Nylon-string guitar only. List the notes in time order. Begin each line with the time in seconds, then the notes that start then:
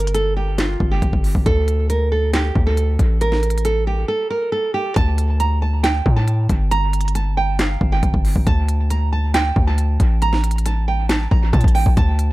Already playing: A#4
0.14 A4
0.37 G4
0.59 F4
0.91 G4
1.46 A4
1.90 A#4
2.12 A4
2.34 G4
2.67 A4
3.21 A#4
3.65 A4
3.87 G4
4.08 A4
4.30 A#4
4.52 A4
4.74 G4
4.96 A5
5.40 A#5
5.62 A5
5.83 G5
6.16 A5
6.71 A#5
7.15 A5
7.37 G5
7.59 F5
7.92 G5
8.47 A5
8.91 A#5
9.13 A5
9.34 G5
9.67 A5
10.22 A#5
10.66 A5
10.88 G5
11.09 A5
11.31 A#5
11.53 A5
11.75 G5
11.97 A5